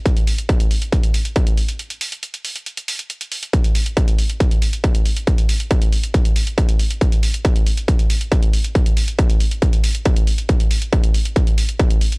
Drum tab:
HH |xxoxxxoxxxoxxxox|xxoxxxoxxxoxxxox|xxoxxxoxxxoxxxox|xxoxxxoxxxoxxxox|
BD |o---o---o---o---|----------------|o---o---o---o---|o---o---o---o---|

HH |xxoxxxoxxxoxxxox|xxoxxxoxxxoxxxox|xxoxxxoxxxoxxxox|
BD |o---o---o---o---|o---o---o---o---|o---o---o---o---|